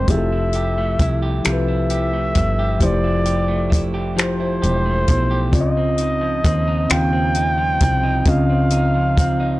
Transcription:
0.00 0.77 C4 medium
0.00 0.32 G4 medium
0.00 0.17 A#4 medium
0.00 0.12 C5 medium
0.08 0.95 F1 medium
0.08 0.92 F3 medium
0.08 1.44 F3 medium
0.08 0.93 E4 medium
0.08 0.93 G4 medium
0.08 0.16 G#4 medium
0.08 1.31 E5 medium
0.08 kick loud
0.08 closed hi-hat medium
0.17 0.97 A4 medium
0.32 0.99 E4 soft
0.53 1.21 G4 medium
0.53 closed hi-hat soft
0.78 2.12 A3 medium
0.99 1.41 C2 medium
0.99 1.67 E4 medium
0.99 kick medium
0.99 closed hi-hat medium
1.22 1.89 G4 medium
1.44 2.32 C2 medium
1.44 2.29 F3 medium
1.44 2.80 F3 medium
1.44 2.29 E4 medium
1.44 2.29 G4 medium
1.44 1.52 A4 medium
1.44 2.86 E5 medium
1.44 finger snap medium
1.44 closed hi-hat medium
1.53 2.33 B4 medium
1.68 2.34 E4 medium
1.90 2.58 G4 medium
1.90 closed hi-hat soft
2.13 3.47 A3 medium
2.35 2.77 G1 medium
2.35 3.03 E4 medium
2.35 kick medium
2.35 closed hi-hat medium
2.59 3.25 G4 medium
2.79 4.59 F1 medium
2.79 3.64 F3 medium
2.79 4.16 F3 medium
2.79 3.65 E4 medium
2.79 3.65 G4 medium
2.79 3.66 C5 medium
2.79 kick medium
2.79 closed hi-hat medium
2.84 3.92 D5 medium
3.04 3.69 E4 soft
3.25 3.93 G4 medium
3.25 closed hi-hat soft
3.48 4.84 A3 medium
3.70 4.39 E4 medium
3.70 kick medium
3.70 closed hi-hat medium
3.94 4.61 G4 medium
4.16 5.01 F3 medium
4.16 6.03 F3 medium
4.16 5.01 E4 medium
4.16 5.02 G4 medium
4.16 5.02 C5 medium
4.16 finger snap medium
4.16 closed hi-hat medium
4.20 5.51 C5 medium
4.40 5.07 E4 medium
4.62 5.04 E1 medium
4.62 5.29 G4 medium
4.62 closed hi-hat soft
4.86 5.63 A3 medium
5.08 5.54 B1 medium
5.08 5.63 E4 medium
5.08 kick medium
5.08 closed hi-hat medium
5.31 5.62 G4 medium
5.51 6.40 C#2 medium
5.51 6.37 C#3 medium
5.51 6.89 C#3 medium
5.51 6.37 C4 medium
5.51 6.38 F4 medium
5.51 5.60 D5 medium
5.51 kick loud
5.51 closed hi-hat medium
5.57 6.93 D#5 loud
5.57 6.41 D#5 medium
5.77 6.44 C4 medium
5.98 6.66 D#4 medium
5.98 closed hi-hat soft
6.21 7.57 F3 medium
6.44 6.86 D#2 medium
6.44 7.12 C4 medium
6.44 kick loud
6.44 closed hi-hat medium
6.68 7.35 D#4 medium
6.89 7.77 D#2 medium
6.89 7.74 C#3 medium
6.89 8.26 C#3 medium
6.89 7.74 C4 medium
6.89 7.75 F4 medium
6.89 7.75 F5 medium
6.89 8.31 G5 loud
6.89 finger snap medium
6.89 closed hi-hat medium
7.13 7.80 C4 medium
7.35 8.02 D#4 medium
7.35 closed hi-hat soft
7.58 8.94 F3 medium
7.80 8.23 C2 medium
7.80 8.49 C4 medium
7.80 kick medium
7.80 closed hi-hat medium
8.03 8.70 D#4 medium
8.25 9.60 C#2 loud
8.25 9.10 C#3 medium
8.25 9.60 C#3 medium
8.25 9.10 C4 medium
8.25 9.11 F4 medium
8.25 9.12 D#5 medium
8.25 kick loud
8.25 closed hi-hat medium
8.30 9.60 F5 medium
8.50 9.16 C4 medium
8.70 9.39 D#4 medium
8.70 closed hi-hat soft
8.94 9.60 F3 medium
9.17 9.60 C4 medium
9.17 kick loud
9.17 closed hi-hat medium
9.40 9.60 D#4 medium

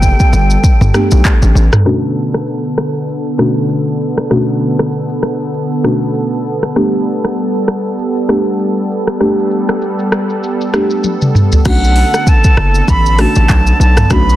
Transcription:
0.00 0.13 F#1 medium
0.00 1.82 G3 medium
0.00 1.82 B3 medium
0.00 1.82 A4 loud
0.00 1.25 G5 loud
0.00 kick medium
0.00 shaker medium
0.20 kick loud
0.20 shaker medium
0.33 0.57 G1 loud
0.33 shaker medium
0.50 shaker medium
0.64 kick loud
0.64 shaker medium
0.81 0.91 G1 loud
0.81 mid tom loud
0.81 shaker medium
0.94 1.11 A3 medium
0.94 1.11 B3 medium
0.94 1.11 D4 medium
0.94 1.11 G4 medium
0.94 cross-stick medium
0.94 mid tom medium
0.94 shaker soft
1.11 1.22 B1 loud
1.11 shaker medium
1.25 kick loud
1.25 clap medium
1.25 shaker medium
1.42 1.53 A1 medium
1.42 shaker soft
1.55 1.69 A1 loud
1.55 shaker medium
1.73 cross-stick medium
1.73 mid tom loud
1.73 shaker medium
1.85 2.43 B2 medium
1.85 6.72 D3 medium
1.85 2.43 A3 medium
1.85 11.61 B3 medium
1.85 2.43 C#4 medium
1.85 2.43 D4 medium
1.85 2.43 F#4 loud
1.85 11.61 A4 medium
1.85 cross-stick medium
1.85 shaker medium
2.05 shaker soft
2.34 cross-stick medium
2.34 shaker medium
2.47 shaker medium
2.64 shaker medium
2.78 cross-stick medium
2.95 shaker soft
3.09 shaker medium
3.26 shaker medium
3.38 3.56 B2 medium
3.38 3.56 A3 medium
3.38 3.56 C#4 medium
3.38 3.56 D4 medium
3.38 3.56 F#4 medium
3.38 cross-stick medium
3.38 shaker soft
3.56 shaker medium
3.69 shaker medium
3.87 shaker soft
4.01 shaker soft
4.18 cross-stick medium
4.18 shaker medium
4.30 4.88 B2 medium
4.30 4.88 A3 medium
4.30 4.88 C#4 medium
4.30 4.88 D4 medium
4.30 4.88 F#4 loud
4.30 cross-stick medium
4.30 shaker medium
4.50 shaker soft
4.79 cross-stick medium
4.79 shaker medium
4.92 shaker medium
5.10 shaker medium
5.23 cross-stick medium
5.40 shaker soft
5.54 shaker medium
5.72 shaker soft
5.84 6.01 B2 medium
5.84 6.01 A3 medium
5.84 6.01 C#4 medium
5.84 6.01 D4 medium
5.84 6.01 F#4 medium
5.84 cross-stick medium
5.84 shaker soft
6.01 shaker medium
6.15 shaker medium
6.33 shaker soft
6.47 shaker soft
6.63 cross-stick medium
6.63 shaker medium
6.76 11.62 G3 medium
6.76 7.33 A3 medium
6.76 7.33 B3 medium
6.76 7.33 D4 medium
6.76 7.33 G4 loud
6.76 cross-stick medium
6.76 shaker medium
6.95 shaker medium
7.25 cross-stick medium
7.25 shaker medium
7.37 shaker medium
7.55 shaker medium
7.68 cross-stick medium
7.85 shaker soft
7.99 shaker medium
8.16 shaker medium
8.28 8.46 A3 medium
8.28 8.46 B3 medium
8.28 8.46 D4 medium
8.28 8.46 G4 medium
8.28 cross-stick medium
8.28 shaker soft
8.46 shaker medium
8.59 shaker medium
8.77 shaker soft
8.91 shaker medium
9.07 cross-stick medium
9.07 shaker medium
9.20 9.78 A3 medium
9.20 9.78 B3 medium
9.20 9.78 D4 medium
9.20 9.78 G4 loud
9.20 cross-stick medium
9.20 shaker medium
9.39 shaker soft
9.51 shaker medium
9.69 cross-stick medium
9.69 shaker medium
9.82 shaker medium
9.99 shaker medium
10.12 cross-stick loud
10.12 shaker medium
10.30 shaker soft
10.43 shaker medium
10.61 shaker soft
10.73 10.91 A3 medium
10.73 10.91 B3 medium
10.73 10.91 D4 medium
10.73 10.91 G4 medium
10.73 cross-stick medium
10.73 shaker soft
10.90 shaker medium
11.04 high tom medium
11.04 shaker medium
11.22 mid tom medium
11.22 shaker soft
11.35 mid tom medium
11.35 shaker medium
11.52 floor tom medium
11.52 shaker medium
11.65 12.04 B1 loud
11.65 14.36 D3 medium
11.65 12.23 A3 loud
11.65 14.36 B3 medium
11.65 12.23 C#4 medium
11.65 12.23 D4 medium
11.65 12.23 F#4 loud
11.65 14.08 A4 loud
11.65 12.30 F#5 loud
11.65 kick loud
11.65 cross-stick medium
11.65 crash loud
11.65 shaker medium
11.84 shaker medium
11.96 open hi-hat medium
12.14 cross-stick medium
12.14 shaker medium
12.27 12.91 A5 loud
12.27 kick medium
12.27 shaker medium
12.44 kick loud
12.44 shaker medium
12.57 12.82 F#1 medium
12.57 cross-stick loud
12.75 shaker medium
12.88 13.26 A1 loud
12.88 13.22 B5 loud
12.88 kick loud
12.88 shaker medium
13.06 shaker medium
13.18 13.36 A3 medium
13.18 13.36 C#4 medium
13.18 13.36 D4 medium
13.18 13.36 F#4 medium
13.18 13.81 A5 loud
13.18 cross-stick medium
13.18 open hi-hat soft
13.18 shaker soft
13.35 13.46 A1 medium
13.35 shaker medium
13.49 13.73 B1 loud
13.49 kick loud
13.49 clap medium
13.49 shaker medium
13.67 shaker soft
13.80 14.04 B1 medium
13.80 14.14 A5 loud
13.80 shaker medium
13.97 cross-stick medium
13.97 mid tom loud
13.97 shaker medium
14.10 14.36 B1 loud
14.10 14.36 A3 loud
14.10 14.36 C#4 medium
14.10 14.36 D4 medium
14.10 14.36 F#4 loud
14.10 14.36 B4 loud
14.10 14.36 B5 loud
14.10 kick loud
14.10 cross-stick loud
14.10 shaker medium
14.29 shaker medium

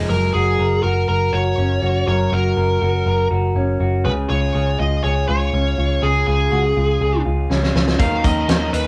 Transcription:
0.00 0.10 F3 soft
0.00 0.15 F3 medium
0.00 0.38 G#3 medium
0.10 0.30 F#1 medium
0.10 2.06 F#3 medium
0.10 0.33 A#4 medium
0.10 0.58 A#4 soft
0.34 0.55 F#1 medium
0.34 0.83 F#4 soft
0.34 0.83 G#4 medium
0.59 0.79 F#1 medium
0.59 1.07 A#4 medium
0.83 1.04 F#1 medium
0.83 1.32 F#4 medium
0.83 1.08 A#4 medium
1.08 1.29 F#1 medium
1.08 2.07 A#4 medium
1.08 1.34 A#4 medium
1.33 1.53 F#1 medium
1.33 1.81 F#4 medium
1.33 2.07 C#5 medium
1.58 1.78 F#1 medium
1.58 3.55 C#4 soft
1.82 2.03 F#1 medium
1.82 2.31 F#4 medium
2.07 2.28 F#1 medium
2.07 4.05 F#3 medium
2.07 2.56 A#4 medium
2.07 2.33 C#5 medium
2.32 2.52 F#1 medium
2.32 2.80 F#4 soft
2.32 3.27 A#4 medium
2.57 2.77 F#1 medium
2.57 3.05 A#4 medium
2.82 3.02 F#1 medium
2.82 3.30 F#4 soft
3.06 3.26 F#1 medium
3.06 4.05 A#4 medium
3.31 3.51 F#1 medium
3.31 3.79 F#4 medium
3.55 3.76 F#1 medium
3.55 5.53 C#4 medium
3.80 4.07 F#1 medium
3.80 4.10 F#4 medium
4.05 4.25 C#2 medium
4.05 6.01 C#3 medium
4.05 4.54 G#4 medium
4.05 4.12 B4 medium
4.30 4.50 C#2 medium
4.30 4.78 F4 soft
4.30 4.79 C#5 medium
4.55 4.75 C#2 medium
4.55 5.03 G#4 medium
4.80 5.00 C#2 medium
4.80 5.27 F4 soft
4.80 5.02 D#5 medium
5.04 5.24 C#2 medium
5.04 6.01 G#4 medium
5.04 5.27 C#5 medium
5.29 5.49 C#2 medium
5.29 5.77 F4 medium
5.29 6.05 C#5 medium
5.53 5.73 C#2 medium
5.53 7.49 C#4 medium
5.78 5.98 C#2 medium
5.78 6.25 F4 medium
6.02 6.23 C#2 medium
6.02 7.99 C#3 medium
6.02 6.51 G#4 medium
6.02 6.25 G#4 medium
6.27 6.48 C#2 medium
6.27 6.76 F4 soft
6.27 7.22 G#4 medium
6.51 6.72 C#2 medium
6.51 6.64 F#4 medium
6.64 7.00 G#4 soft
6.77 6.97 C#2 medium
6.77 7.24 F4 soft
7.01 7.21 C#2 medium
7.01 8.00 G#4 medium
7.25 7.46 C#2 medium
7.25 7.73 F4 medium
7.50 7.71 C#2 medium
7.50 8.27 C#4 soft
7.50 snare soft
7.63 snare medium
7.74 7.95 C#2 medium
7.74 8.04 F4 soft
7.74 snare medium
7.88 snare medium
7.99 8.20 D#2 medium
7.99 8.24 D#3 medium
7.99 8.87 D#3 medium
7.99 8.24 F#3 medium
7.99 8.24 C#4 medium
7.99 8.23 D#4 medium
7.99 8.47 A#4 medium
7.99 8.22 A#4 medium
7.99 8.25 F5 medium
7.99 kick loud
7.99 closed hi-hat medium
8.23 8.45 D#2 medium
8.23 8.47 C#4 soft
8.23 8.72 D#4 soft
8.23 8.48 D#4 soft
8.23 8.48 A#4 soft
8.23 8.75 D#5 medium
8.23 kick medium
8.23 closed hi-hat medium
8.48 8.69 D#2 medium
8.48 8.73 D#3 medium
8.48 8.73 F#3 medium
8.48 8.73 C#4 medium
8.48 8.73 D#4 medium
8.48 8.87 A#4 medium
8.48 8.72 A#4 medium
8.48 snare loud
8.48 closed hi-hat medium
8.73 8.87 D#2 medium
8.73 8.87 C#4 soft
8.73 8.87 D#4 soft
8.73 8.87 A#4 soft
8.73 8.87 B4 medium
8.73 closed hi-hat medium

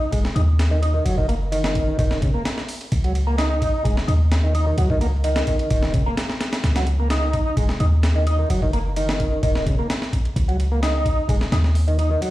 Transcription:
0.00 0.11 D#4 loud
0.12 0.30 D#1 loud
0.12 0.24 G#3 medium
0.12 kick loud
0.12 ride medium
0.25 snare medium
0.35 1.01 D#2 loud
0.35 0.42 D#4 medium
0.35 ride medium
0.59 snare loud
0.59 ride medium
0.71 0.81 D#3 medium
0.82 0.93 D#4 medium
0.82 ride medium
0.94 1.04 D#3 loud
1.05 1.94 F#1 medium
1.05 1.16 F#3 medium
1.05 ride medium
1.18 1.27 D#3 loud
1.18 kick loud
1.29 1.35 A#3 loud
1.29 ride medium
1.52 1.97 D#3 loud
1.52 ride medium
1.64 snare loud
1.75 kick medium
1.75 ride medium
1.99 2.40 D#1 loud
1.99 2.21 D#3 loud
1.99 kick loud
1.99 ride medium
2.11 snare medium
2.22 2.32 C#3 loud
2.22 kick medium
2.22 ride medium
2.34 2.43 A#3 medium
2.45 snare loud
2.45 ride medium
2.58 snare medium
2.69 open hi-hat medium
2.81 ride soft
2.92 3.68 C#2 medium
2.92 kick loud
2.92 ride medium
3.04 3.13 F#3 medium
3.04 ride soft
3.15 ride medium
3.27 3.36 A#3 medium
3.38 3.83 D#4 loud
3.38 snare loud
3.38 ride medium
3.62 kick medium
3.62 ride medium
3.84 4.02 D#1 loud
3.84 3.96 G#3 medium
3.84 kick loud
3.84 ride medium
3.97 snare medium
4.08 4.73 D#2 loud
4.08 4.14 D#4 medium
4.08 ride medium
4.32 snare loud
4.32 ride medium
4.44 4.53 D#3 medium
4.55 4.66 D#4 medium
4.55 ride medium
4.66 4.76 D#3 loud
4.78 5.42 C#2 medium
4.78 4.89 F#3 medium
4.78 ride medium
4.90 4.99 D#3 loud
4.90 kick loud
5.01 5.07 A#3 loud
5.01 ride medium
5.24 5.70 D#3 loud
5.24 ride medium
5.36 snare loud
5.47 kick medium
5.47 ride medium
5.59 ride soft
5.71 6.12 D#1 loud
5.71 5.93 D#3 loud
5.71 kick loud
5.71 ride medium
5.83 snare medium
5.94 6.04 C#3 loud
5.94 kick loud
5.94 ride medium
6.06 6.15 A#3 medium
6.17 snare loud
6.17 ride medium
6.29 snare medium
6.41 snare loud
6.41 ride medium
6.53 snare loud
6.53 ride medium
6.64 7.40 C#2 medium
6.64 snare loud
6.64 ride medium
6.76 6.85 F#3 medium
6.76 snare loud
6.76 ride medium
6.87 ride medium
7.00 7.08 A#3 medium
7.10 7.56 D#4 loud
7.10 snare loud
7.10 ride medium
7.33 kick medium
7.33 ride medium
7.57 7.74 D#1 loud
7.57 7.68 G#3 medium
7.57 kick loud
7.57 ride medium
7.69 snare medium
7.80 8.45 D#2 loud
7.80 7.86 D#4 medium
7.80 ride medium
8.03 snare loud
8.03 ride medium
8.16 8.25 D#3 medium
8.27 8.38 D#4 medium
8.27 ride medium
8.39 8.49 D#3 loud
8.50 9.38 F#1 medium
8.50 8.61 F#3 medium
8.50 ride medium
8.62 8.71 D#3 loud
8.62 kick loud
8.73 8.79 A#3 loud
8.73 ride medium
8.96 9.42 D#3 loud
8.96 ride medium
9.09 snare loud
9.20 kick medium
9.20 ride medium
9.43 9.84 D#1 loud
9.43 9.65 D#3 loud
9.43 kick loud
9.43 ride medium
9.55 snare medium
9.66 9.76 C#3 loud
9.66 kick loud
9.66 ride medium
9.79 9.87 A#3 medium
9.90 snare loud
9.90 ride medium
10.02 snare medium
10.13 kick loud
10.13 ride medium
10.25 ride soft
10.36 11.12 C#2 medium
10.36 kick loud
10.36 ride medium
10.48 10.57 F#3 medium
10.48 ride soft
10.60 ride medium
10.72 10.80 A#3 medium
10.83 11.28 D#4 loud
10.83 snare loud
10.83 ride medium
11.06 kick loud
11.06 ride medium
11.29 11.46 D#1 loud
11.29 11.41 G#3 medium
11.29 kick loud
11.29 ride medium
11.41 snare medium
11.52 12.17 D#2 loud
11.52 11.58 D#4 medium
11.52 snare loud
11.52 ride medium
11.64 snare soft
11.75 open hi-hat medium
11.88 11.97 D#3 medium
11.88 ride soft
11.99 12.10 D#4 medium
11.99 ride medium
12.10 12.21 D#3 loud
12.22 12.30 F#3 medium
12.22 ride medium

